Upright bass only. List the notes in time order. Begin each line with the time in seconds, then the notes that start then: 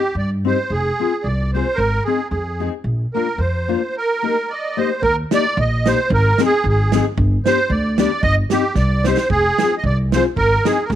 0.15 G2
0.70 F1
1.24 C2
1.78 G#1
2.31 F2
2.84 A#1
3.38 F2
5.02 D#2
5.57 A#1
6.10 G#1
6.64 G#1
7.17 G1
7.70 D2
8.23 G1
8.75 C2
9.30 F1
9.84 C2
10.36 G#1
10.90 A1